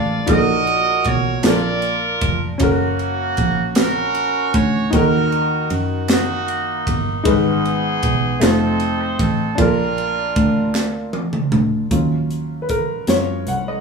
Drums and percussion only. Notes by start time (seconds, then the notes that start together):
0.27 kick, ride
0.67 ride
1.04 kick, ride
1.43 snare, clap, ride
1.82 ride
2.21 kick, ride
2.60 kick, ride
2.99 ride
3.37 kick, ride
3.75 snare, clap, ride
4.15 ride
4.54 kick, ride
4.93 kick, ride
5.32 ride
5.70 ride
6.08 snare, clap, ride
6.48 ride
6.87 kick, ride
7.25 kick, ride
7.65 ride
8.03 kick, ride
8.41 snare, clap, ride
8.80 ride
9.19 kick, ride
9.58 kick, ride
9.98 ride
10.36 kick, ride
10.75 snare, clap
11.13 high tom
11.33 mid tom
11.52 mid tom
11.91 kick, closed hi-hat
12.31 closed hi-hat
12.69 kick, closed hi-hat
13.07 snare, closed hi-hat
13.47 closed hi-hat